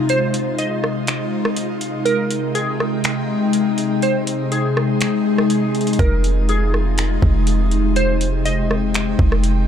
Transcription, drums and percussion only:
0.09 closed hi-hat
0.34 closed hi-hat
0.58 closed hi-hat
0.84 cross-stick
1.07 finger snap, closed hi-hat
1.45 cross-stick
1.56 closed hi-hat
1.81 closed hi-hat
2.06 closed hi-hat
2.31 closed hi-hat
2.55 closed hi-hat
2.80 cross-stick
3.04 finger snap, closed hi-hat
3.53 closed hi-hat
3.78 closed hi-hat
4.02 closed hi-hat
4.27 closed hi-hat
4.52 closed hi-hat
4.77 cross-stick
5.01 finger snap, closed hi-hat
5.38 cross-stick
5.50 closed hi-hat
5.75 closed hi-hat
5.81 closed hi-hat
5.87 closed hi-hat
5.93 closed hi-hat
5.99 kick, closed hi-hat
6.24 closed hi-hat
6.49 closed hi-hat
6.74 cross-stick
6.98 finger snap, closed hi-hat
7.22 kick
7.47 closed hi-hat
7.71 closed hi-hat
7.96 closed hi-hat
8.21 closed hi-hat
8.46 closed hi-hat
8.71 cross-stick
8.94 finger snap, closed hi-hat
9.19 kick
9.32 cross-stick
9.44 closed hi-hat

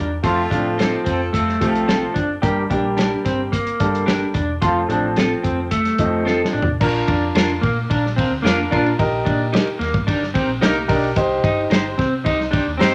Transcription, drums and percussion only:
0.24 kick, closed hi-hat
0.51 kick, closed hi-hat
0.79 snare, closed hi-hat
1.06 kick, closed hi-hat
1.34 kick, closed hi-hat
1.49 snare
1.61 kick, closed hi-hat
1.75 closed hi-hat
1.89 snare, closed hi-hat
2.16 kick, closed hi-hat
2.43 kick, closed hi-hat
2.71 kick, closed hi-hat
2.98 snare, closed hi-hat
3.26 kick, snare, closed hi-hat
3.53 kick, closed hi-hat
3.67 closed hi-hat
3.80 kick, closed hi-hat
3.95 closed hi-hat
4.08 snare, closed hi-hat
4.34 kick, closed hi-hat
4.62 kick, closed hi-hat
4.90 closed hi-hat
5.16 snare, closed hi-hat
5.44 kick, closed hi-hat
5.71 kick, closed hi-hat
5.85 snare, closed hi-hat
5.98 kick, closed hi-hat
6.27 snare
6.45 snare
6.62 floor tom
6.81 kick, crash
7.08 kick, ride
7.35 snare, ride
7.49 ride
7.63 kick, ride
7.91 kick, ride
8.06 snare
8.18 kick, ride
8.46 snare, ride
8.72 kick, ride
8.86 ride
8.99 kick, ride
9.26 kick, ride
9.53 snare, ride
9.67 ride
9.81 snare, ride
9.94 kick
10.08 kick, ride
10.23 snare
10.35 kick, ride
10.62 snare, ride
10.89 kick, open hi-hat, ride
11.04 ride
11.16 kick, hi-hat pedal, ride
11.44 kick, ride
11.71 snare, ride
11.99 kick, snare, ride
12.26 kick, ride
12.41 snare
12.53 kick, ride
12.81 snare, ride

